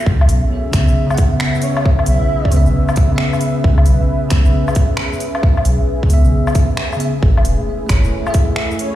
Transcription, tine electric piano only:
X:1
M:4/4
L:1/16
Q:"Swing 16ths" 1/4=134
K:C#m
V:1 name="Tine electric piano"
z6 [C,B,e]3 [C,B,f]6- [C,B,f]- | [C,B,f]6 [C,B,e]4- [C,B,e] [C,B,e]4- [C,B,e]- | [C,B,e]6 [C,B,e]3 z6 z | z6 [C,B,e]4- [C,B,e] z3 [C,B,e] z |
z6 [A,Gc]3 [A,Ge]6- [A,Ge] |]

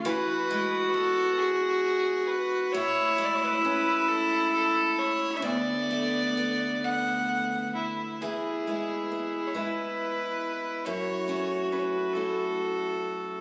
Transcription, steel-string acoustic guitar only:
X:1
M:6/8
L:1/8
Q:3/8=45
K:Emix
V:1 name="Steel-string acoustic guitar"
E, G, B,4 | A,, G, C4 | D,, A, B,4 | [E,E] [G,B,E] B, [G,B,E]3 |
[F,,E] [A,CE] C [A,CE]3 |]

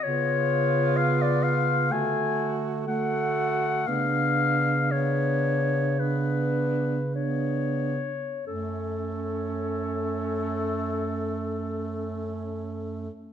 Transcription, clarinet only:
X:1
M:4/4
L:1/16
Q:1/4=55
K:F#m
V:1 name="Clarinet"
c4 ^e d e2 g3 z f4 | ^e4 c4 B4 c4 | A16 |]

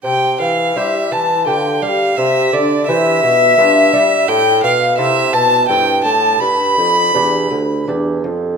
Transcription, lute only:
X:1
M:3/4
L:1/8
Q:1/4=85
K:C
V:1 name="Lute"
z2 [EGc]2 [FGB]2 | z2 [EGc]2 [DFB]2 | z2 [CEA]2 [CEA]2 | z2 [DGd]2 [DGd]2 |]
V:2 name="Lute" clef=bass
C, E, G, E, D, G, | C, D, E, B,, G,, G, | A,, B,, C, B,, G,, A,, | G,, F,, E,, D,, E,, F,, |]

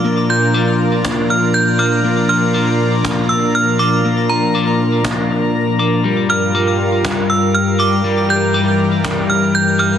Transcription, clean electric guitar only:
X:1
M:4/4
L:1/8
Q:1/4=120
K:Bblyd
V:1 name="Clean electric guitar"
[B,d'] F d'2 B,3 d' | B, F d'2 B,3 d' | B, F d'2 B,3 d' | G, G d'2 G,3 d' |
G, G d'2 G,3 d' |]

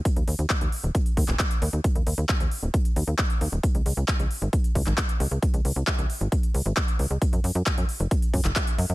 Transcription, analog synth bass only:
X:1
M:4/4
L:1/16
Q:1/4=134
K:Dbmix
V:1 name="Analog synth bass" clef=bass
z E,, E,, E,, z E,, z E,,, z2 E,, E,,, z2 E,, E,, | z E,, E,, E,, z E,, z E,,, z2 E,, E,, z2 E,, E,,, | z D,, D,, D,, z D,, z A,,, z2 D,, A,,, z2 D,, D,, | z D,, D,, D,, z D,, z A,,, z2 D,, A,,, z2 D,, D,, |
z G,, G,, G,, z G,, z G,,, z2 G,, G,,, z2 G,, G,, |]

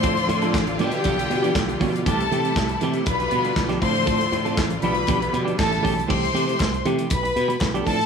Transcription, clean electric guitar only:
X:1
M:4/4
L:1/16
Q:1/4=119
K:Gmix
V:1 name="Clean electric guitar"
[F,CDA] z2 [F,CDA] z2 [F,B,DG] z [F,B,DG] z2 [F,B,DG] z2 [F,B,DG]2 | [E,A,CG] z [E,A,CG] [E,A,CG] z2 [E,A,CG] [E,A,CG] z4 z [F,B,DG] [A,CFA] z | [A,CFA] z2 [A,CFA] z2 [F,B,DG] z [F,B,DG] z2 [F,B,DG] z2 [E,A,^CG] z | [E,A,CG] z [E,A,CG] [E,A,CG] z2 [E,A,CG] [E,A,CG] z4 z [F,B,DG] [F,CDA] z |]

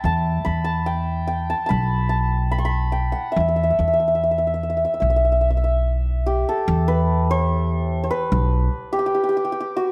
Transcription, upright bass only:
X:1
M:4/4
L:1/8
Q:1/4=73
K:none
V:1 name="Upright bass" clef=bass
E,, E,,3 B,,,4 | E,, E,,3 B,,,4 | E,,4 B,,, z3 |]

